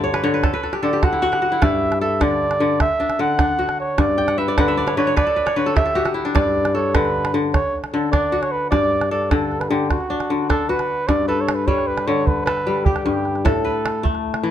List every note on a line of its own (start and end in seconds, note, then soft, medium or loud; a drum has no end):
0.00 0.48 G2 medium
0.00 0.22 D3 medium
0.00 0.23 C#5 medium
0.00 0.30 D5 medium
0.00 0.87 E5 medium
0.00 0.51 F#5 medium
0.00 0.38 G5 medium
0.14 0.33 B4 medium
0.14 calabash click medium
0.24 0.48 D3 medium
0.24 0.89 C#5 medium
0.34 0.53 B4 medium
0.43 0.63 A4 medium
0.43 calabash thump medium
0.43 calabash click medium
0.54 1.76 B4 medium
0.63 0.82 A4 medium
0.63 calabash click soft
0.73 0.93 G4 medium
0.73 calabash click soft
0.83 1.67 D3 medium
0.83 2.01 A4 medium
0.83 1.05 D5 medium
0.93 1.28 G4 medium
1.03 1.22 F#4 medium
1.03 1.64 F#5 loud
1.03 calabash thump medium
1.03 calabash click medium
1.13 1.51 E4 medium
1.22 1.41 F#4 medium
1.32 2.73 G4 medium
1.32 calabash click soft
1.42 1.68 F#4 medium
1.42 calabash click soft
1.52 3.08 E4 medium
1.62 2.85 G2 medium
1.62 2.73 D5 medium
1.62 2.01 E5 loud
1.62 calabash thump medium
1.62 calabash click medium
1.92 calabash click soft
2.01 3.33 A4 medium
2.01 2.23 E5 medium
2.21 2.59 D3 medium
2.21 2.80 D5 loud
2.21 calabash thump medium
2.21 calabash click medium
2.31 calabash click soft
2.51 calabash click soft
2.60 2.85 D3 medium
2.80 3.22 E5 loud
2.80 calabash thump medium
2.80 calabash click medium
3.00 3.39 D4 medium
3.10 calabash click soft
3.19 4.04 D3 medium
3.19 3.79 F#5 loud
3.39 4.93 D4 medium
3.39 calabash thump medium
3.39 calabash click medium
3.49 calabash click soft
3.59 4.04 F#4 medium
3.69 calabash click soft
3.80 4.01 C#5 medium
3.98 5.22 G2 medium
3.98 4.40 D5 loud
3.98 calabash thump medium
3.98 calabash click medium
4.18 4.64 G5 medium
4.28 4.58 F#5 medium
4.28 calabash click medium
4.38 4.58 B4 medium
4.38 4.68 E5 medium
4.48 4.77 D5 medium
4.58 4.96 D3 medium
4.58 4.95 B4 medium
4.58 5.55 F#5 medium
4.58 calabash thump medium
4.58 calabash click medium
4.68 5.71 E5 medium
4.68 calabash click soft
4.77 5.13 D5 medium
4.87 5.07 C#5 medium
4.87 calabash click medium
4.97 5.22 D3 medium
4.97 5.16 B4 medium
4.97 5.16 C#5 loud
5.07 5.46 C#5 medium
5.16 5.36 B4 medium
5.16 5.58 D5 loud
5.16 calabash thump medium
5.16 calabash click medium
5.27 5.66 A4 medium
5.36 5.56 B4 medium
5.46 6.31 C#5 medium
5.46 calabash click medium
5.56 6.40 D3 medium
5.56 6.79 B4 medium
5.56 5.76 C#5 medium
5.66 5.85 A4 medium
5.76 5.95 G4 medium
5.76 6.13 E5 loud
5.76 calabash thump medium
5.76 calabash click medium
5.86 6.74 A4 medium
5.86 calabash click soft
5.95 6.05 F#4 medium
5.95 7.36 G4 medium
6.05 6.41 F#4 medium
6.05 calabash click medium
6.14 7.71 E4 medium
6.25 7.93 D4 medium
6.35 7.59 G2 medium
6.35 7.46 D5 medium
6.35 6.76 D5 loud
6.35 calabash thump medium
6.35 calabash click medium
6.65 calabash click medium
6.75 8.06 A4 medium
6.75 6.96 C#5 medium
6.94 7.33 D3 medium
6.94 7.34 B4 loud
6.94 calabash thump medium
6.94 calabash click medium
7.05 calabash click soft
7.25 calabash click medium
7.34 7.59 D3 medium
7.53 7.81 C#5 medium
7.53 calabash thump medium
7.53 calabash click medium
7.84 calabash click soft
7.93 8.77 D3 medium
7.93 8.11 A4 medium
8.12 9.81 D4 medium
8.12 8.43 D5 medium
8.12 calabash thump medium
8.12 calabash click medium
8.23 calabash click soft
8.32 8.78 F#4 medium
8.42 8.53 C#5 medium
8.42 calabash click soft
8.52 8.70 B4 medium
8.70 9.95 G2 medium
8.70 9.08 D5 loud
8.70 9.82 D5 medium
8.70 calabash thump medium
8.70 calabash click medium
9.01 calabash click soft
9.11 10.43 A4 medium
9.11 9.32 D5 medium
9.22 calabash click soft
9.31 9.69 D3 medium
9.31 9.62 A4 medium
9.31 calabash thump medium
9.31 calabash click medium
9.42 calabash click soft
9.52 calabash click soft
9.60 9.71 B4 medium
9.60 calabash click medium
9.70 9.95 D3 medium
9.70 9.90 G4 medium
9.91 10.46 F#4 medium
9.91 calabash thump medium
9.91 calabash click medium
10.00 calabash click soft
10.10 10.49 D4 medium
10.20 calabash click soft
10.30 11.14 D3 medium
10.30 calabash click soft
10.50 12.17 D4 medium
10.50 10.71 A4 loud
10.50 calabash thump medium
10.50 calabash click medium
10.69 11.15 F#4 medium
10.69 11.09 B4 medium
10.79 calabash click soft
11.08 13.04 G2 medium
11.08 11.27 D5 medium
11.08 calabash thump medium
11.08 calabash click medium
11.28 12.47 A4 medium
11.28 11.42 B4 medium
11.41 11.56 C#5 medium
11.49 calabash click medium
11.55 11.68 B4 medium
11.67 12.12 G3 medium
11.67 11.89 C#5 loud
11.67 calabash thump medium
11.78 calabash click soft
11.87 12.09 B4 medium
11.98 calabash click medium
12.07 13.50 D3 medium
12.07 12.28 C#5 medium
12.26 12.45 B4 medium
12.26 calabash thump medium
12.45 13.45 A4 medium
12.45 12.86 B4 medium
12.45 calabash click medium
12.57 calabash click soft
12.67 13.50 G3 medium
12.77 calabash click soft
12.85 13.05 G4 medium
12.85 14.27 G4 medium
12.85 calabash thump medium
12.96 calabash click soft
13.06 13.50 G2 medium
13.06 13.47 G4 medium
13.25 calabash click soft
13.35 calabash click soft
13.45 14.51 A2 medium
13.45 14.51 A4 medium
13.45 14.24 A4 medium
13.45 calabash thump medium
13.45 calabash click medium
13.65 14.51 B4 medium
13.86 calabash click medium
14.03 14.51 A3 medium
14.03 calabash thump medium
14.15 calabash click soft
14.34 calabash click medium
14.43 14.51 E3 medium